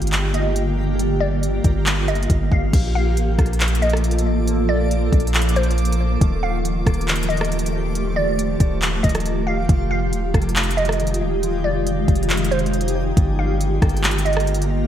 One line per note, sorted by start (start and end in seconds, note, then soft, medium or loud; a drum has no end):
0.00 1.61 G1 loud
0.00 2.70 D3 medium
0.00 0.11 G3 medium
0.00 2.70 A#3 medium
0.00 2.70 F4 medium
0.00 2.70 G4 medium
0.00 0.30 F5 medium
0.00 2.70 F5 medium
0.00 closed hi-hat medium
0.07 closed hi-hat medium
0.12 0.34 G3 medium
0.12 clap loud
0.12 closed hi-hat medium
0.34 0.98 G3 medium
0.34 0.96 D#5 medium
0.34 closed hi-hat medium
0.56 closed hi-hat medium
0.99 1.20 G3 medium
0.99 closed hi-hat medium
1.20 1.85 G3 medium
1.20 2.04 D5 medium
1.43 closed hi-hat medium
1.64 2.27 G1 loud
1.64 kick medium
1.64 closed hi-hat medium
1.86 2.06 G3 medium
1.86 clap loud
1.86 closed hi-hat medium
2.08 2.79 G3 medium
2.08 2.49 D#5 medium
2.08 closed hi-hat soft
2.15 closed hi-hat medium
2.23 closed hi-hat medium
2.30 2.51 G1 loud
2.30 kick medium
2.30 closed hi-hat medium
2.52 2.73 G1 loud
2.52 2.73 F5 medium
2.52 kick medium
2.73 3.18 A#1 loud
2.73 9.65 F3 medium
2.73 2.95 A#3 medium
2.73 6.18 A#3 medium
2.73 6.18 F4 medium
2.73 6.18 A4 medium
2.73 6.18 A4 loud
2.73 9.65 D6 medium
2.73 kick loud
2.73 closed hi-hat medium
2.73 crash loud
2.95 3.59 A#3 medium
2.95 3.78 F5 medium
3.17 3.38 A1 loud
3.17 closed hi-hat medium
3.39 4.27 A#1 loud
3.39 kick loud
3.39 cross-stick medium
3.39 closed hi-hat soft
3.46 closed hi-hat soft
3.53 closed hi-hat medium
3.60 3.82 A#3 medium
3.60 clap loud
3.60 closed hi-hat medium
3.68 closed hi-hat medium
3.75 closed hi-hat medium
3.82 4.47 A#3 medium
3.82 4.43 D#5 medium
3.82 closed hi-hat soft
3.90 cross-stick loud
3.90 closed hi-hat medium
3.97 closed hi-hat medium
4.04 closed hi-hat medium
4.11 closed hi-hat medium
4.18 closed hi-hat medium
4.26 4.71 A1 loud
4.47 4.69 A#3 medium
4.47 closed hi-hat medium
4.69 5.10 A#1 loud
4.69 5.34 A#3 medium
4.69 5.52 D5 medium
4.91 closed hi-hat medium
5.13 6.17 A#1 loud
5.13 kick medium
5.13 closed hi-hat soft
5.20 closed hi-hat soft
5.27 closed hi-hat medium
5.34 5.55 A#3 medium
5.34 clap loud
5.34 closed hi-hat medium
5.42 closed hi-hat medium
5.49 closed hi-hat medium
5.56 8.77 A#3 medium
5.56 6.18 C5 medium
5.56 closed hi-hat soft
5.63 closed hi-hat soft
5.71 closed hi-hat medium
5.78 closed hi-hat medium
5.85 closed hi-hat medium
5.92 closed hi-hat medium
6.21 6.84 D#1 loud
6.21 6.42 D#3 medium
6.21 9.66 A3 medium
6.21 14.87 F4 medium
6.21 9.66 F4 medium
6.21 14.87 G4 medium
6.21 kick loud
6.21 closed hi-hat medium
6.43 7.08 D#3 medium
6.43 7.26 F5 medium
6.65 closed hi-hat medium
6.86 8.56 D#1 loud
6.86 kick medium
6.86 cross-stick medium
6.86 closed hi-hat soft
6.94 closed hi-hat soft
7.01 closed hi-hat medium
7.08 7.29 D#3 medium
7.08 clap loud
7.08 closed hi-hat medium
7.16 closed hi-hat medium
7.23 closed hi-hat medium
7.29 7.94 D#3 medium
7.29 7.91 D#5 medium
7.29 closed hi-hat soft
7.37 cross-stick loud
7.37 closed hi-hat soft
7.45 closed hi-hat medium
7.52 closed hi-hat medium
7.59 closed hi-hat medium
7.66 closed hi-hat medium
7.95 8.16 D#3 medium
7.95 closed hi-hat medium
8.16 8.81 D#3 medium
8.16 9.00 D5 medium
8.39 closed hi-hat medium
8.60 9.02 D#1 loud
8.60 kick loud
8.60 closed hi-hat medium
8.82 9.03 D#3 medium
8.82 clap loud
8.82 closed hi-hat medium
9.03 9.67 D#1 loud
9.03 9.74 D#3 medium
9.03 9.44 D#5 medium
9.03 kick medium
9.03 closed hi-hat medium
9.09 closed hi-hat medium
9.15 cross-stick loud
9.15 closed hi-hat medium
9.20 closed hi-hat medium
9.26 closed hi-hat medium
9.47 9.68 F5 medium
9.69 10.14 F1 loud
9.69 13.14 D#3 medium
9.69 9.89 F3 medium
9.69 13.13 G#3 medium
9.69 13.14 G#3 medium
9.69 13.13 D#4 medium
9.69 kick loud
9.69 closed hi-hat medium
9.90 10.55 F3 medium
9.90 10.74 F5 medium
10.13 10.33 D#1 loud
10.13 closed hi-hat medium
10.34 11.23 F1 loud
10.34 kick loud
10.34 cross-stick medium
10.34 closed hi-hat soft
10.42 closed hi-hat soft
10.49 closed hi-hat medium
10.56 10.77 F3 medium
10.56 clap loud
10.56 closed hi-hat medium
10.63 closed hi-hat medium
10.71 closed hi-hat medium
10.77 11.42 F3 medium
10.77 11.39 D#5 medium
10.77 closed hi-hat soft
10.85 cross-stick loud
10.85 closed hi-hat medium
10.92 closed hi-hat medium
11.00 closed hi-hat medium
11.07 closed hi-hat medium
11.14 closed hi-hat medium
11.21 11.66 D#1 loud
11.43 11.63 F3 medium
11.43 closed hi-hat medium
11.64 12.06 F1 loud
11.64 12.29 F3 medium
11.64 12.47 D5 medium
11.87 closed hi-hat medium
12.08 13.13 F1 loud
12.08 kick medium
12.08 closed hi-hat soft
12.15 closed hi-hat soft
12.23 closed hi-hat medium
12.30 12.50 F3 medium
12.30 clap loud
12.30 closed hi-hat medium
12.37 closed hi-hat medium
12.44 closed hi-hat medium
12.51 13.22 F3 medium
12.51 13.13 C5 medium
12.51 closed hi-hat soft
12.59 closed hi-hat soft
12.66 closed hi-hat medium
12.73 closed hi-hat medium
12.81 closed hi-hat medium
12.88 closed hi-hat medium
13.17 13.80 G1 loud
13.17 14.87 D3 medium
13.17 13.38 G3 medium
13.17 14.87 A#3 medium
13.17 14.87 F5 medium
13.17 kick loud
13.17 closed hi-hat medium
13.39 14.02 G3 medium
13.39 14.22 F5 medium
13.61 closed hi-hat medium
13.82 14.87 G1 loud
13.82 kick loud
13.82 cross-stick loud
13.82 closed hi-hat soft
13.89 closed hi-hat soft
13.97 closed hi-hat medium
14.04 14.25 G3 medium
14.04 clap loud
14.04 closed hi-hat medium
14.11 closed hi-hat medium
14.18 closed hi-hat medium
14.25 14.87 G3 medium
14.25 14.87 D#5 medium
14.25 closed hi-hat soft
14.33 cross-stick loud
14.33 closed hi-hat soft
14.40 closed hi-hat medium
14.47 closed hi-hat medium
14.54 closed hi-hat medium
14.62 closed hi-hat medium